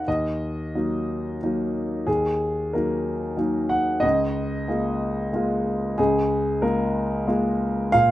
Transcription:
grand piano
0.08 D#2 D#5
0.75 F#3 A#3 D#4
1.43 F#3 A#3 D#4
2.07 D#2 G#4
2.73 F#3 A#3 D#4 A#4
3.37 F#3 A#3 D#4
3.69 F#5
4.00 C#2 D#5
4.68 G#3 A#3 F4
5.33 G#3 A#3 F4
5.98 C#2 G#4
6.62 G#3 A#3 F4 A#4
7.27 G#3 A#3 F4
7.92 A#2 F5

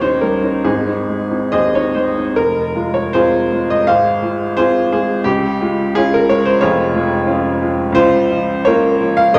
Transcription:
upright piano
0.01 C#4 D#4 C5
0.21 G3 A#4
0.43 C#4 D#4
0.64 G#1 C4 D#4 G#4
0.87 C4 D#4
1.09 G#3
1.31 C4 D#4
1.52 D#2 G#4 C5 D#5
1.75 C4 D#4 C#5
1.95 G#3 C5
2.17 C4 D#4
2.36 F1 A#4
2.75 G#3 F4
2.94 C#5
3.13 C4 F4 G#4 C5
3.53 G#3 F4
3.70 D#5
3.87 G#1 G#4 C5 F5
4.22 G#3 F4
4.57 C4 F4 G#4 C5
4.92 G#3 F4 G#4
5.24 C#2 G4
5.61 G#3 F4
5.95 C#4 F4 G#4
6.14 A#4
6.29 G#3 F4 C#5
6.45 C5
6.61 F1 F2 F4 G#4 C#5
6.94 G#3 F4
7.27 C#4 F4
7.61 G#3 F4
7.92 C#2 F4 C5
8.30 F3 F4
8.65 A#3 F4 A#4 C#5
9.00 F3 F4
9.17 F5
9.33 D#1 D#2 G4 A#4 D#5

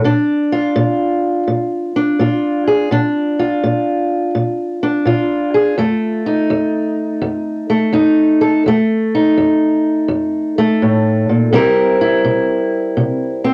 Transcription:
steel-string acoustic guitar
0.04 A#2 D4
0.52 F4
0.76 A#2
1.48 A#2
1.96 D4
2.19 A#2 F4
2.68 G#4
2.91 A#2 D4
3.39 F4
3.64 A#2
4.35 A#2
4.83 D4
5.05 A#2 F4
5.54 G#4
5.78 F2 A3
6.26 D#4
6.50 F2
7.21 F2
7.70 A3
7.93 F2 D#4
8.41 A4
8.66 F2 A3
9.15 D#4
9.37 F2
10.08 F2
10.58 A3
10.82 A2
11.29 A#2
11.53 C3 G3 C4 E4 A#4
12.01 E4
12.25 C3
12.97 C3
13.44 C4

